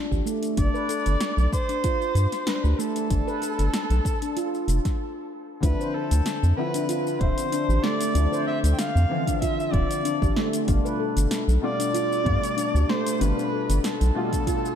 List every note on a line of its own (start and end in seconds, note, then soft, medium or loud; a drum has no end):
0.11 0.22 A1 loud
0.11 0.24 G4 medium
0.11 kick medium
0.11 shaker soft
0.26 0.56 A3 loud
0.26 shaker medium
0.43 closed hi-hat soft
0.43 shaker soft
0.57 0.69 G1 loud
0.57 0.73 D4 medium
0.57 1.49 D5 loud
0.57 kick loud
0.57 closed hi-hat medium
0.57 shaker soft
0.74 0.88 B4 loud
0.74 shaker soft
0.89 1.05 A4 medium
0.89 closed hi-hat soft
0.89 shaker medium
1.06 1.16 G1 medium
1.06 closed hi-hat soft
1.06 shaker soft
1.20 snare medium
1.20 closed hi-hat medium
1.20 shaker soft
1.37 1.48 B1 loud
1.37 shaker soft
1.53 2.50 C5 loud
1.53 kick loud
1.53 shaker medium
1.69 1.83 D4 medium
1.69 closed hi-hat soft
1.69 shaker soft
1.84 2.46 F4 loud
1.84 kick medium
1.84 closed hi-hat medium
1.84 shaker soft
2.02 shaker soft
2.15 2.27 G2 medium
2.15 closed hi-hat soft
2.15 shaker medium
2.32 snare soft
2.32 closed hi-hat soft
2.32 shaker soft
2.47 2.62 D4 medium
2.47 2.56 B4 loud
2.47 snare medium
2.47 closed hi-hat medium
2.47 shaker soft
2.54 2.64 C5 medium
2.63 2.74 D2 loud
2.63 2.77 G4 medium
2.63 2.81 B4 loud
2.63 shaker soft
2.79 3.09 A3 loud
2.79 5.00 A4 medium
2.79 shaker medium
2.96 closed hi-hat soft
2.96 shaker soft
3.10 3.22 G1 loud
3.10 3.26 D4 loud
3.10 kick loud
3.10 closed hi-hat medium
3.10 shaker soft
3.27 3.41 B4 loud
3.27 shaker soft
3.42 3.58 A4 medium
3.42 closed hi-hat soft
3.42 shaker medium
3.59 3.69 G1 medium
3.59 closed hi-hat soft
3.59 shaker soft
3.74 snare medium
3.74 closed hi-hat medium
3.74 shaker soft
3.90 4.00 B1 medium
3.90 closed hi-hat soft
3.90 shaker soft
4.05 kick loud
4.05 shaker medium
4.22 4.36 D4 medium
4.22 closed hi-hat soft
4.22 shaker soft
4.37 4.52 F4 medium
4.37 closed hi-hat medium
4.37 shaker soft
4.54 shaker soft
4.68 4.80 F1 loud
4.68 closed hi-hat soft
4.68 shaker medium
4.85 kick medium
4.85 snare soft
4.85 closed hi-hat soft
4.85 shaker soft
5.60 5.75 D2 loud
5.60 6.53 D3 medium
5.60 6.54 F3 medium
5.60 6.54 C4 medium
5.60 5.78 D4 medium
5.60 5.96 B4 medium
5.60 kick loud
5.60 closed hi-hat medium
5.60 shaker medium
5.64 6.55 E4 medium
5.80 5.93 C5 medium
5.80 shaker soft
5.94 6.56 A4 medium
5.94 6.11 A4 medium
6.11 6.21 D2 medium
6.11 closed hi-hat soft
6.11 shaker medium
6.26 snare medium
6.26 closed hi-hat medium
6.26 shaker medium
6.43 6.53 F2 medium
6.43 shaker soft
6.57 7.17 D3 medium
6.57 7.17 F3 medium
6.57 7.18 C4 medium
6.57 7.18 E4 medium
6.57 7.21 B4 medium
6.74 6.89 D4 medium
6.74 closed hi-hat soft
6.74 shaker medium
6.89 7.51 F4 loud
6.89 closed hi-hat medium
6.89 shaker medium
7.07 shaker soft
7.19 7.32 D1 medium
7.19 8.11 D3 medium
7.19 8.12 F3 medium
7.19 8.12 C4 medium
7.19 7.85 C5 medium
7.19 kick loud
7.19 closed hi-hat soft
7.23 8.13 E5 medium
7.38 closed hi-hat soft
7.38 shaker medium
7.52 7.68 D4 medium
7.52 closed hi-hat medium
7.52 shaker medium
7.69 7.79 A1 loud
7.69 7.83 G4 medium
7.69 shaker soft
7.83 8.14 A3 loud
7.83 8.47 D5 loud
7.83 snare medium
8.01 closed hi-hat soft
8.01 shaker medium
8.14 8.27 D2 loud
8.14 9.06 D3 medium
8.14 9.06 F3 medium
8.14 9.07 C4 medium
8.14 8.31 D4 loud
8.14 9.08 E4 medium
8.14 closed hi-hat medium
8.14 shaker medium
8.32 8.46 C5 loud
8.32 shaker soft
8.47 8.63 A4 medium
8.47 8.59 E5 loud
8.64 8.74 D2 medium
8.64 closed hi-hat soft
8.64 shaker medium
8.73 8.80 G5 medium
8.78 9.41 F5 loud
8.78 snare medium
8.78 closed hi-hat medium
8.78 shaker medium
8.96 9.06 F2 loud
8.96 shaker soft
9.09 9.69 D3 medium
9.09 9.70 E3 loud
9.09 9.70 F3 medium
9.09 9.70 C4 medium
9.27 9.41 D4 medium
9.27 kick medium
9.27 closed hi-hat soft
9.27 shaker medium
9.42 10.04 F4 loud
9.42 9.75 E5 loud
9.42 kick medium
9.42 closed hi-hat medium
9.42 shaker medium
9.60 shaker soft
9.71 9.85 D1 loud
9.71 10.64 D3 medium
9.71 10.64 F3 medium
9.71 10.65 C4 medium
9.71 10.36 D5 loud
9.71 10.66 E5 loud
9.71 kick loud
9.71 closed hi-hat soft
9.91 closed hi-hat soft
9.91 shaker medium
10.05 10.20 D4 medium
10.05 closed hi-hat medium
10.05 shaker medium
10.22 10.32 A1 loud
10.22 10.35 G4 medium
10.22 kick loud
10.22 shaker soft
10.36 10.67 A3 loud
10.36 snare medium
10.53 closed hi-hat soft
10.53 shaker medium
10.66 10.80 G1 loud
10.66 11.58 B2 medium
10.66 11.59 G3 medium
10.66 11.60 A3 medium
10.66 10.83 D4 loud
10.66 11.60 F4 medium
10.66 kick loud
10.66 closed hi-hat medium
10.66 shaker medium
10.85 10.98 B4 loud
10.85 shaker soft
11.00 11.16 A4 medium
11.17 11.27 G1 medium
11.17 closed hi-hat soft
11.17 shaker medium
11.31 snare medium
11.31 closed hi-hat medium
11.31 shaker medium
11.48 11.58 B1 loud
11.48 shaker soft
11.62 12.22 B2 medium
11.62 12.22 G3 medium
11.62 12.23 A3 medium
11.62 12.23 F4 loud
11.62 12.91 D5 loud
11.79 11.94 D4 medium
11.79 closed hi-hat soft
11.79 shaker medium
11.94 12.56 F4 loud
11.94 closed hi-hat medium
11.94 shaker medium
12.13 shaker soft
12.24 12.38 G2 medium
12.24 13.16 B2 medium
12.24 13.17 G3 medium
12.24 13.18 A3 medium
12.24 13.18 F4 medium
12.24 kick loud
12.24 closed hi-hat soft
12.43 closed hi-hat soft
12.43 shaker medium
12.57 12.73 D4 loud
12.57 closed hi-hat medium
12.57 shaker medium
12.74 12.85 D2 loud
12.74 12.88 G4 medium
12.74 shaker soft
12.89 13.19 A3 loud
12.89 13.22 C5 loud
12.89 snare medium
13.06 closed hi-hat soft
13.06 shaker medium
13.19 13.33 G1 loud
13.19 14.11 B2 medium
13.19 14.12 G3 medium
13.19 14.12 A3 medium
13.19 13.36 D4 loud
13.19 14.13 F4 medium
13.19 13.84 B4 medium
13.19 closed hi-hat medium
13.19 shaker medium
13.37 13.51 B4 loud
13.37 shaker soft
13.52 13.68 A4 medium
13.69 13.79 G1 medium
13.69 closed hi-hat soft
13.69 shaker medium
13.84 14.75 A4 medium
13.84 snare medium
13.84 closed hi-hat medium
13.84 shaker medium
14.01 14.11 B1 loud
14.01 closed hi-hat soft
14.01 shaker soft
14.14 14.75 B2 medium
14.14 14.75 G3 medium
14.14 14.75 A3 medium
14.14 14.75 F4 loud
14.32 14.46 D4 medium
14.32 kick medium
14.32 closed hi-hat soft
14.32 shaker medium
14.47 14.62 F4 loud
14.47 kick medium
14.47 closed hi-hat medium
14.47 shaker medium
14.65 shaker soft